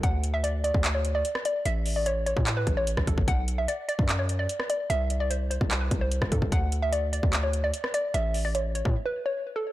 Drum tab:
HH |x-x-x-x-x-x-x-x-|x-o-x-x-x-x-x-x-|x-x-x-x-x-x-x-x-|x-x-x-x-x-x-x-x-|
CP |--------x-------|--------x-------|--------x-------|--------x-------|
SD |-------------r--|-------------r--|-------------r--|-------------r--|
BD |o------o--------|-------o--o--ooo|o------o--------|-------o--o--ooo|

HH |x-x-x-x-x-x-x-x-|x-o-x-x---------|
CP |--------x-------|----------------|
SD |-------------r--|----------------|
BD |o------o--------|-------o--------|